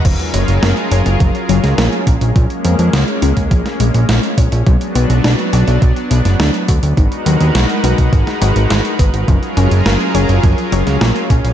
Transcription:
<<
  \new Staff \with { instrumentName = "Analog synth pad" } { \time 4/4 \key fis \major \tempo 4 = 104 << { <fis eis' gis' ais'>1 | <gis ais>1 | <fis b d'>1 | <gis fis' ais' b'>1 |
<fis eis' gis' ais'>1 | } \\ { cis'1~ | cis'1 | r1 | dis'1 |
cis'1 | } >> }
  \new Staff \with { instrumentName = "Synth arpeggio sound" } { \time 4/4 \key fis \major eis8 fis8 ais8 cis'8 eis8 fis8 ais8 cis'8 | eis8 gis8 ais8 cis'8 eis8 gis8 ais8 cis'8 | fis8 b8 d'8 fis'8 fis8 b8 d'8 fis'8 | dis8 fis8 gis8 b8 dis8 fis8 gis8 b8 |
eis8 cis'8 ais8 cis'8 eis8 fis8 ais8 cis'8 | }
  \new Staff \with { instrumentName = "Analog synth bass" } { \clef bass \time 4/4 \key fis \major fis,,16 r16 fis,,16 fis,,16 fis,,16 r16 fis,,16 fis,,16 fis,,16 r16 fis,,16 cis,16 ais,,16 r16 ais,,16 ais,,16 | ais,,16 r16 eis,16 eis,16 cis,16 r16 cis,16 cis,16 ais,,16 r16 ais,,16 ais,,16 ais,,16 r16 ais,,16 ais,,16 | b,,16 r16 b,,16 b,,16 b,,16 r16 b,,16 b,,16 b,,16 r16 b,,16 fis,,16 d,16 r16 d,16 d,16 | gis,,16 r16 dis,16 dis,16 b,,16 r16 b,,16 b,,16 gis,,16 r16 gis,,16 gis,,16 gis,,16 r16 gis,,16 gis,,16 |
fis,,16 r16 fis,,16 fis,,16 fis,,16 r16 fis,,16 fis,,16 fis,,16 r16 fis,,16 cis,16 ais,,16 r16 ais,,16 ais,,16 | }
  \new DrumStaff \with { instrumentName = "Drums" } \drummode { \time 4/4 <cymc hh bd>16 hh16 hh16 hh16 <hh sn>16 hh16 hh16 hh16 <hh bd>16 hh16 hh16 <hh sn>16 <hh sn>16 hh16 <hh bd>16 hh16 | <hh bd>16 hh16 hh16 hh16 <hh sn>16 hh16 hh16 <hh bd>16 <hh bd>16 <hh sn>16 hh16 hh16 <hh sn>16 hh16 <hh bd>16 hh16 | <hh bd>16 hh16 hh16 hh16 <hh sn>16 hh16 hh16 hh16 <hh bd>16 hh16 hh16 <hh sn>16 <hh sn>16 hh16 <hh bd>16 hh16 | <hh bd>16 hh16 hh16 hh16 <hh sn>16 hh16 hh16 <hh bd>16 <hh bd>16 <hh sn>16 hh16 hh16 <hh sn>16 hh16 <hh bd>16 hh16 |
<hh bd>16 hh16 hh16 hh16 <hh sn>16 hh16 hh16 hh16 <hh bd>16 hh16 hh16 <hh sn>16 <hh sn>16 hh16 <hh bd>16 hh16 | }
>>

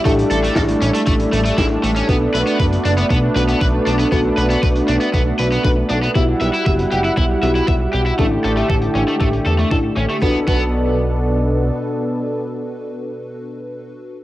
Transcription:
<<
  \new Staff \with { instrumentName = "FM electric piano" } { \time 4/4 \key b \minor \tempo 4 = 118 <d' e' g' a'>2. <d' e' g' a'>4 | <d' fis' a' b'>2~ <d' fis' a' b'>8 <d' fis' a' b'>4. | <d' fis' a' b'>2. <d' fis' a' b'>4 | <b e' fis' g'>2~ <b e' fis' g'>8 <b e' fis' g'>4. |
<d' e' g' a'>2. <d' e' g' a'>4 | <d' fis' a' b'>8 <d' fis' a' b'>2.~ <d' fis' a' b'>8~ | <d' fis' a' b'>1 | }
  \new Staff \with { instrumentName = "Overdriven electric guitar" } { \time 4/4 \key b \minor a16 r16 a'16 a16 a'16 r16 cis'16 a16 a16 r16 a16 a16 e'16 r16 a16 cis'16 | b16 r16 b'16 b16 b'16 r16 d'16 b16 b16 r16 b'16 b16 b'16 r16 d'16 b16 | b16 r16 b'16 b16 b'16 r16 d'16 b16 b16 r16 b'16 b16 b'16 r16 d'16 b16 | e'16 r16 e''16 e'16 e''16 r16 g'16 e'16 e'16 r16 e''16 e'16 e''16 r16 g'16 e'16 |
a16 r16 a'16 a16 a'16 r16 cis'16 a16 a16 r16 a'16 a16 a'16 r16 cis'16 a16 | b16 r16 b16 r2. r16 | r1 | }
  \new Staff \with { instrumentName = "Analog synth pad" } { \time 4/4 \key b \minor << { d'1~ | d'1~ | d'1 | fis''1 |
g'1 | <b, b d' a'>1~ | <b, b d' a'>1 | } \\ { <g a>1 | <a b>1~ | <a b>1 | <g e'>1 |
<d a>1 | r1 | r1 | } >> }
  \new Staff \with { instrumentName = "Analog synth bass" } { \clef bass \time 4/4 \key b \minor a,,8 a,,8 a,,8 a,,8 a,,8 a,,8 a,,8 a,,8 | b,,8 b,,8 fis,,8 fis,,8 b,,8 b,,8 b,,8 b,,8 | b,,8 b,,8 b,,8 b,,8 b,,8 b,,8 b,,8 b,,8 | b,,8 b,,8 fis,,8 fis,,8 b,,8 b,,8 b,,8 b,,8 |
a,,8 a,,8 a,,8 a,,8 a,,8 e,8 a,,8 a,,8 | b,,8 b,,2~ b,,8 r4 | r1 | }
  \new DrumStaff \with { instrumentName = "Drums" } \drummode { \time 4/4 <hh bd>16 hh16 hh16 hh16 <hh bd sn>16 hh16 hh16 hh16 <hh bd>16 hh16 hh16 hh16 <hh bd sn>8 hh16 hh16 | <hh bd>8 hh16 hh16 <hh bd>16 hh16 hh16 hh16 <hh bd>8 hh16 hh16 <hh bd>8 hh16 hh16 | <hh bd>8 hh16 hh16 <hh bd>16 hh16 hh16 hh16 <hh bd>8 hh16 hh16 <hh bd>8 hh16 hh16 | <hh bd>8 hh16 hh16 <hh bd>16 hh16 hh16 hh16 <hh bd>8 hh16 hh16 <hh bd>8 hh16 hh16 |
<hh bd>8 hh16 hh16 <hh bd>16 hh16 hh16 hh16 <hh bd>16 hh16 hh16 hh16 <hh bd>8 hh16 hh16 | bd8 bd8 r4 r4 r4 | r4 r4 r4 r4 | }
>>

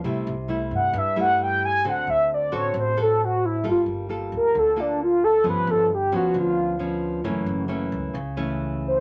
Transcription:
<<
  \new Staff \with { instrumentName = "Soft synth lead" } { \time 4/4 \key g \lydian \tempo 4 = 133 r4. fis''8 e''8 fis''8 g''8 gis''8 | fis''8 e''8 d''8 cis''8 c''8 a'8 fis'8 e'8 | f'8 r4 bes'8 a'8 d'8 f'8 a'8 | b'8 a'8 g'8 fis'8 f'2 |
r2. r8 c''8 | }
  \new Staff \with { instrumentName = "Nylon-string guitar" } { \time 4/4 \key g \lydian << { <g a e'>8 r8 <g a e'>4 r8 <g a e'>4. | <c' fis' a'>4. <c' fis' a'>4 <c' fis' a'>4. | <bes f' a'>4 <bes f' a'>4. <bes f' a'>4. | <f b cis'>4 r8 <f b cis'>4. <f b cis'>4 |
<e a cis'>4 <e a cis'>4 r8 <e a cis'>4. | } \\ { c2 g,2 | d2 a,2 | g2 d2 | g,2 d2 |
fis,2 cis2 | } >> }
  \new Staff \with { instrumentName = "Upright bass" } { \clef bass \time 4/4 \key g \lydian c,8 c,4 g,8 g,2 | d,8 d,4 a,,8 a,,2 | g,,8 g,,4 d,8 d,2 | g,,8 g,,4 d,8 d,2 |
fis,,8 fis,,4 cis,8 cis,2 | }
>>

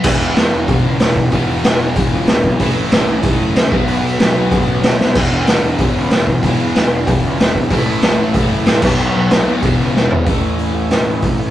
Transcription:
<<
  \new Staff \with { instrumentName = "Overdriven electric guitar" } { \clef bass \time 4/4 \key a \lydian \tempo 4 = 188 <e, b, e>1 | <e, b, e>1 | <a, e a>2.~ <a, e a>8 <b, fis b>8~ | <b, fis b>2.~ <b, fis b>8 r8 |
<e, b, e>1 | <e, b, e>1 | <a, e a>2.~ <a, e a>8 <b, fis b>8~ | <b, fis b>2 <e, b, e>2 |
<a, e a>2~ <a, e a>8 <a, e a>8 <a, e a>4 | }
  \new Staff \with { instrumentName = "Overdriven electric guitar" } { \clef bass \time 4/4 \key a \lydian <e, b, e>2 <e, b, e>2 | <e, b, e>2 <e, b, e>2 | <a, e a>2 <a, e a>4. <b, fis b>8~ | <b, fis b>4. <b, fis b>2 r8 |
<e, b, e>2 <e, b, e>2 | <e, b, e>2 <e, b, e>2 | <a, e a>2 <a, e a>4. <b, fis b>8~ | <b, fis b>4. <b, fis b>8 <e, b, e>2 |
<a, e a>1 | }
  \new Staff \with { instrumentName = "Overdriven electric guitar" } { \clef bass \time 4/4 \key a \lydian <e, b, e>1 | <e, b, e>1 | <a, e a>2.~ <a, e a>8 <b, fis b>8~ | <b, fis b>2.~ <b, fis b>8 r8 |
<e, b, e>1 | <e, b, e>1 | <a, e a>2.~ <a, e a>8 <b, fis b>8~ | <b, fis b>2 <e, b, e>2 |
r1 | }
  \new Staff \with { instrumentName = "Picked electric bass" } { \clef bass \time 4/4 \key a \lydian e,,8 e,,8 e,,8 e,,8 e,,8 cis,8 e,,8 e,,8 | e,,8 e,,8 e,,8 e,,8 e,,8 cis,8 e,,8 b,,8 | a,,8 a,,8 a,,8 a,,8 a,,8 fis,,8 cis,8 b,,8 | b,,8 b,,8 b,,8 b,,8 b,,8 a,,8 b,,8 b,,8 |
e,,8 e,,8 e,,8 e,,8 e,,8 cis,8 e,,8 e,,8 | e,,8 e,,8 e,,8 e,,8 e,,8 cis,8 e,,8 e,,8 | a,,8 a,,8 a,,8 a,,8 a,,8 fis,,8 a,,8 b,,8 | b,,8 b,,8 b,,8 dis,8 e,,8 cis,8 e,,8 e,,8 |
a,,8 a,,8 a,,8 a,,8 a,,8 a,,8 a,,8 a,,8 | }
  \new DrumStaff \with { instrumentName = "Drums" } \drummode { \time 4/4 <cymc bd>4 <hho sn>4 <hho bd>4 <hho sn>8 bd8 | <hho bd>4 <hho sn>4 <hho bd>4 <hho sn>8 bd8 | <hho bd>4 <hho sn>4 <hho bd>4 <hho sn>8 bd8 | hho4 <hho sn>4 <hho bd>4 <hho sn>8 sn8 |
<cymc bd>4 <hho sn>4 <hho bd>4 <hho sn>8 bd8 | <hho bd>4 <hho sn>4 <hho bd>4 <hho sn>8 bd8 | <hho bd>4 <hho sn>4 <hho bd>4 <hho sn>8 <cymc bd>8 | r4 <hho sn>4 <hho bd>4 sn8 tomfh8 |
<hho bd>4 hho4 <hho sn>4 <hho bd>4 | }
>>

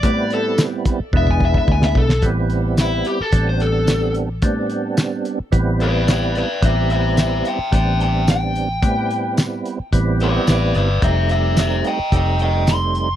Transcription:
<<
  \new Staff \with { instrumentName = "Overdriven electric guitar" } { \time 4/4 \key a \minor \tempo 4 = 109 d''8 a'8 r4 e''16 gis''16 e''16 e''16 gis''16 e''16 a'8 | r4 e'8 g'16 a'8 c''16 a'4 r8 | r2 r8 <b' d''>8 <b' d''>8 <b' d''>8 | <c'' e''>8 <c'' e''>8 <c'' e''>8 <e'' g''>8 <e'' g''>8 <e'' g''>8 g''4~ |
g''4 r4. <b' d''>8 <b' d''>8 <b' d''>8 | <c'' e''>8 <c'' e''>8 <c'' e''>8 <ees'' g''>8 <ees'' g''>8 <ees'' g''>8 c'''4 | }
  \new Staff \with { instrumentName = "Tonewheel organ" } { \time 4/4 \key a \minor <g b c' e'>4.~ <g b c' e'>16 r16 <gis b d' e'>4.~ <gis b d' e'>16 r16 | <g b c' e'>4.~ <g b c' e'>16 r16 <g b c' d'>4.~ <g b c' d'>16 r16 | <g b c' d'>4.~ <g b c' d'>16 r16 <g b c' e'>4.~ <g b c' e'>16 r16 | <g b c' e'>4.~ <g b c' e'>16 r16 <g b c' d'>4.~ <g b c' d'>16 r16 |
<g b c' e'>4.~ <g b c' e'>16 r16 <g b c' e'>4.~ <g b c' e'>16 r16 | <g a c' ees'>4.~ <g a c' ees'>16 r16 <g a c' ees'>4.~ <g a c' ees'>16 r16 | }
  \new Staff \with { instrumentName = "Fingered electric bass" } { \clef bass \time 4/4 \key a \minor a,4.~ a,16 r16 e,,4 d,8 b,,8 | a,,4.~ a,,16 r16 a,,2 | a,4.~ a,16 r16 a,,2 | a,,4.~ a,,16 r16 a,,2 |
a,4.~ a,16 r16 a,,4 a,,8 g,,8 | f,,4.~ f,,16 r16 f,,2 | }
  \new DrumStaff \with { instrumentName = "Drums" } \drummode { \time 4/4 <hh bd>8 hh8 <hh sn tamb>8 <hh bd>8 bd16 bd16 bd16 bd16 bd16 sn16 bd16 sn16 | <hh bd>8 hh8 <hh sn tamb>8 hh8 <hh bd>8 hh8 <hh sn tamb>8 hh8 | <hh bd>8 hh8 <hh sn tamb>8 hh8 <hh bd>8 hh8 <hh sn tamb>8 <hh sn>8 | <hh bd>8 hh8 <hh sn tamb>8 hh8 <hh bd>8 hh8 <hh sn tamb>8 hh8 |
<hh bd>8 hh8 <hh sn tamb>8 hh8 <hh bd>8 hh8 <hh sn tamb>8 hh8 | <hh bd>8 hh8 <hh sn tamb>8 hh8 <hh bd>8 hh8 <hh sn tamb>8 hh8 | }
>>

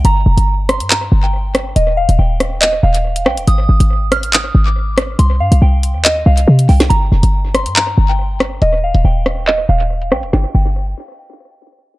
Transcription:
<<
  \new Staff \with { instrumentName = "Synth bell" } { \time 4/4 \key g \phrygian \tempo 4 = 140 bes''4. c'''8 bes''8. g''4~ g''16 | ees''8 f''8 g''4 ees''8 f''4 g''8 | ees'''4. f'''8 ees'''8. d'''4~ d'''16 | c'''8 f''8 g''4 ees''8 f''4 g''8 |
bes''4. c'''8 bes''8. g''4~ g''16 | ees''8 f''8 g''4 ees''8 f''4 g''8 | g''8 g''8 r2. | }
  \new Staff \with { instrumentName = "808-style bass" } { \clef bass \time 4/4 \key g \phrygian g,,8 f,,16 g,,4 g,8. g,,4. | ees,,8. ees,,16 ees,,4. ees,,4 bes,,16 ees,,16 | aes,,8 aes,,16 aes,,4.~ aes,,16 aes,,4. | c,8 g,16 c,16 c,8. ees,8. c,8 c8 c,8 |
g,,8 f,,16 g,,4 g,8. g,,4. | ees,,8. ees,,16 ees,,4. ees,,4 bes,,16 ees,,16 | g,,16 r16 g,,4 r2 r8 | }
  \new DrumStaff \with { instrumentName = "Drums" } \drummode { \time 4/4 hh8. hh16 r8 <hh ss>16 hh16 <hc hh>4 r8 <hh ss>8 | hh8. hh16 r8 <hh ss>8 <hc hh>8. hh16 r16 hh16 ss16 hh16 | hh8. hh16 r8 <hh ss>16 hh16 <hc hh>4 r8 <hh ss>8 | hh8. hh16 r8 hh8 <hc hh>8. hh16 r16 hh16 hho16 <hh sn>16 |
hh8. hh16 r8 <hh ss>16 hh16 <hc hh>4 r8 <hh ss>8 | hh8. hh16 r8 <hh ss>8 <hc hh>8. hh16 r16 hh16 ss16 hh16 | sn8 cymc8 r4 r4 r4 | }
>>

